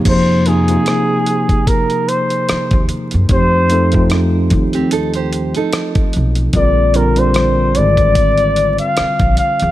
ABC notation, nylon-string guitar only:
X:1
M:4/4
L:1/16
Q:"Swing 16ths" 1/4=74
K:Fm
V:1 name="Nylon-string guitar"
z16 | z6 z [CG] [E=A] [Gc]2 [EA]4- [EA] | z16 |]